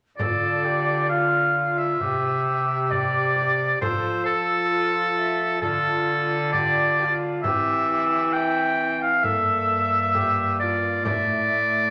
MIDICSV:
0, 0, Header, 1, 6, 480
1, 0, Start_track
1, 0, Key_signature, -1, "minor"
1, 0, Tempo, 906344
1, 98, Time_signature, 4, 2, 24, 8
1, 6303, End_track
2, 0, Start_track
2, 0, Title_t, "Oboe"
2, 0, Program_c, 0, 68
2, 93, Note_on_c, 0, 74, 75
2, 555, Note_off_c, 0, 74, 0
2, 576, Note_on_c, 0, 77, 82
2, 938, Note_on_c, 0, 76, 68
2, 946, Note_off_c, 0, 77, 0
2, 1537, Note_on_c, 0, 74, 81
2, 1545, Note_off_c, 0, 76, 0
2, 2014, Note_off_c, 0, 74, 0
2, 2018, Note_on_c, 0, 72, 79
2, 2252, Note_off_c, 0, 72, 0
2, 2254, Note_on_c, 0, 69, 86
2, 2958, Note_off_c, 0, 69, 0
2, 2974, Note_on_c, 0, 69, 81
2, 3448, Note_off_c, 0, 69, 0
2, 3455, Note_on_c, 0, 74, 95
2, 3781, Note_off_c, 0, 74, 0
2, 3932, Note_on_c, 0, 76, 98
2, 4411, Note_on_c, 0, 79, 95
2, 4419, Note_off_c, 0, 76, 0
2, 4771, Note_off_c, 0, 79, 0
2, 4776, Note_on_c, 0, 77, 79
2, 4888, Note_on_c, 0, 76, 97
2, 4896, Note_off_c, 0, 77, 0
2, 5608, Note_off_c, 0, 76, 0
2, 5611, Note_on_c, 0, 74, 81
2, 5847, Note_off_c, 0, 74, 0
2, 5850, Note_on_c, 0, 74, 91
2, 6303, Note_off_c, 0, 74, 0
2, 6303, End_track
3, 0, Start_track
3, 0, Title_t, "Recorder"
3, 0, Program_c, 1, 74
3, 107, Note_on_c, 1, 69, 61
3, 341, Note_on_c, 1, 67, 57
3, 349, Note_off_c, 1, 69, 0
3, 581, Note_on_c, 1, 65, 63
3, 589, Note_off_c, 1, 67, 0
3, 1065, Note_on_c, 1, 67, 77
3, 1073, Note_off_c, 1, 65, 0
3, 1870, Note_off_c, 1, 67, 0
3, 2022, Note_on_c, 1, 69, 69
3, 2487, Note_off_c, 1, 69, 0
3, 2494, Note_on_c, 1, 65, 67
3, 2729, Note_off_c, 1, 65, 0
3, 2742, Note_on_c, 1, 76, 62
3, 2968, Note_off_c, 1, 76, 0
3, 2971, Note_on_c, 1, 65, 74
3, 3459, Note_on_c, 1, 67, 71
3, 3467, Note_off_c, 1, 65, 0
3, 3698, Note_off_c, 1, 67, 0
3, 3705, Note_on_c, 1, 67, 66
3, 3730, Note_on_c, 1, 65, 72
3, 3735, Note_off_c, 1, 67, 0
3, 3935, Note_off_c, 1, 65, 0
3, 3944, Note_on_c, 1, 67, 72
3, 4174, Note_off_c, 1, 67, 0
3, 4180, Note_on_c, 1, 67, 67
3, 4412, Note_off_c, 1, 67, 0
3, 4420, Note_on_c, 1, 76, 73
3, 4741, Note_off_c, 1, 76, 0
3, 4889, Note_on_c, 1, 69, 83
3, 5373, Note_on_c, 1, 67, 63
3, 5381, Note_off_c, 1, 69, 0
3, 5613, Note_off_c, 1, 67, 0
3, 5616, Note_on_c, 1, 65, 64
3, 5858, Note_on_c, 1, 76, 66
3, 5866, Note_off_c, 1, 65, 0
3, 6303, Note_off_c, 1, 76, 0
3, 6303, End_track
4, 0, Start_track
4, 0, Title_t, "Trombone"
4, 0, Program_c, 2, 57
4, 101, Note_on_c, 2, 65, 55
4, 559, Note_off_c, 2, 65, 0
4, 585, Note_on_c, 2, 65, 58
4, 1065, Note_on_c, 2, 67, 57
4, 1073, Note_off_c, 2, 65, 0
4, 2023, Note_on_c, 2, 65, 64
4, 2031, Note_off_c, 2, 67, 0
4, 2973, Note_off_c, 2, 65, 0
4, 2976, Note_on_c, 2, 65, 62
4, 3371, Note_off_c, 2, 65, 0
4, 3461, Note_on_c, 2, 65, 66
4, 3784, Note_off_c, 2, 65, 0
4, 3938, Note_on_c, 2, 60, 63
4, 4393, Note_off_c, 2, 60, 0
4, 4419, Note_on_c, 2, 60, 60
4, 4896, Note_on_c, 2, 58, 68
4, 4904, Note_off_c, 2, 60, 0
4, 5854, Note_off_c, 2, 58, 0
4, 5858, Note_on_c, 2, 57, 58
4, 6303, Note_off_c, 2, 57, 0
4, 6303, End_track
5, 0, Start_track
5, 0, Title_t, "Cello"
5, 0, Program_c, 3, 42
5, 102, Note_on_c, 3, 50, 59
5, 1040, Note_off_c, 3, 50, 0
5, 1064, Note_on_c, 3, 48, 60
5, 2001, Note_off_c, 3, 48, 0
5, 2022, Note_on_c, 3, 53, 69
5, 2980, Note_on_c, 3, 50, 64
5, 2988, Note_off_c, 3, 53, 0
5, 3940, Note_on_c, 3, 52, 75
5, 3948, Note_off_c, 3, 50, 0
5, 4894, Note_on_c, 3, 43, 68
5, 4902, Note_off_c, 3, 52, 0
5, 5850, Note_off_c, 3, 43, 0
5, 5853, Note_on_c, 3, 45, 69
5, 6303, Note_off_c, 3, 45, 0
5, 6303, End_track
6, 0, Start_track
6, 0, Title_t, "Frame drum"
6, 102, Note_on_c, 9, 64, 76
6, 155, Note_off_c, 9, 64, 0
6, 1062, Note_on_c, 9, 64, 49
6, 1115, Note_off_c, 9, 64, 0
6, 1542, Note_on_c, 9, 64, 52
6, 1595, Note_off_c, 9, 64, 0
6, 1780, Note_on_c, 9, 64, 47
6, 1833, Note_off_c, 9, 64, 0
6, 2022, Note_on_c, 9, 64, 77
6, 2075, Note_off_c, 9, 64, 0
6, 2974, Note_on_c, 9, 64, 47
6, 3027, Note_off_c, 9, 64, 0
6, 3459, Note_on_c, 9, 64, 52
6, 3512, Note_off_c, 9, 64, 0
6, 3703, Note_on_c, 9, 64, 48
6, 3756, Note_off_c, 9, 64, 0
6, 3940, Note_on_c, 9, 64, 73
6, 3993, Note_off_c, 9, 64, 0
6, 4893, Note_on_c, 9, 64, 48
6, 4946, Note_off_c, 9, 64, 0
6, 5375, Note_on_c, 9, 64, 53
6, 5428, Note_off_c, 9, 64, 0
6, 5615, Note_on_c, 9, 64, 49
6, 5668, Note_off_c, 9, 64, 0
6, 5854, Note_on_c, 9, 64, 79
6, 5907, Note_off_c, 9, 64, 0
6, 6303, End_track
0, 0, End_of_file